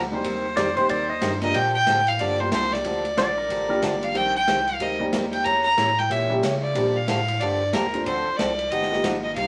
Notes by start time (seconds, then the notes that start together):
Already playing: D2
0.12 G3 A#3 C4 D#4 G4 C5
0.24 D#2 D#3 G3 C4 G4 A#4, ride
0.57 F2 D#3 G3 C4 G4 A#4 D5, snare, hi-hat pedal, ride
0.76 F2 G3 A#3 C4 D#4 G4 C5, ride
0.89 D#2 D#3 G3 C4 G4 A#4 D5, ride
1.10 D#5
1.21 G2 D#3 G3 C4 G4 A#4, snare, hi-hat pedal, ride
1.41 G3 A#3 D4 F4 A#4 D#5, snare, ride
1.54 A#2 D3 F3 A#3 D4 G4 G5, ride
1.75 G5
1.87 A2 D3 F3 A#3 D4 G4, snare, hi-hat pedal, ride
2.07 F5, ride
2.19 G2 D3 F3 A#3 D4 G4 D5, ride
2.39 G3 A#3 D4 F4 G4 C5
2.52 C2 D3 F3 A#3 D4 G4 C5, snare, hi-hat pedal, ride
2.63 snare
2.73 D5, snare
2.84 D2 D3 F3 A#3 D4 G4, ride
3.05 ride
3.17 A#1 D3 F3 A#3 D4 G4 D5, snare, hi-hat pedal, ride
3.38 A#4
3.49 A1 D3 F3 A#3 D4 G4, ride
3.69 G3 A#3 D4 F4 G4 A#4
3.82 G1 D3 F3 A#3 D4 G4, snare, hi-hat pedal, ride
4.03 F5, ride
4.14 A#1 D#3 G3 C4 G4 A#4 G5, ride
4.36 G5
4.47 C2 D#3 G3 C4 G4 A#4, snare, hi-hat pedal, ride
4.67 F5, ride
4.80 D2 D#3 G3 C4 G4 A#4 D#5, ride
4.99 G3 A#3 C4 D#4 G4
5.12 D#2 D#3 G3 C4 G4 A#4, snare, hi-hat pedal, ride
5.32 G5, ride
5.45 E2 E3 A#3 C#4 G4 A#5, ride
5.64 A#5
5.77 A2 E3 A#3 C#4 G4, snare, hi-hat pedal, ride
5.98 G5, snare
6.10 A#2 E3 A#3 C#4 G4 E5, ride
6.30 G3 A#3 C#4 E4 G4
6.42 C#3 E3 A#3 C#4 G4, snare, hi-hat pedal, ride
6.62 D5
6.75 A#2 D3 F3 G3 A#3 D4 F4 G4, ride
6.96 F5
7.07 A2 D3 F3 A#3 D4 G4 F5, snare, hi-hat pedal, ride
7.28 ride
7.40 G2 D3 F3 A#3 D4 G4 D5, ride
7.73 D#2 D3 F3 A#3 D4 G4 A#4, snare, hi-hat pedal, ride
7.93 A3 C4 D4 F4 C5, ride
8.05 D2 D3 F3 C4 D4 A4 C5, ride
8.27 D2
8.37 C2 D3 F3 C4 D4 A4 D5, snare, hi-hat pedal, ride
8.59 ride
8.70 G1 F3 B3 D#4 G4 D#5, ride
8.82 snare
8.90 A#3 B3 D#4 F4 G4, snare
9.04 G#1 F3 B3 D#4 G4, snare, hi-hat pedal, ride
9.23 D#5
9.35 C2 C3 G3 A#3 D#4 G4 F5, ride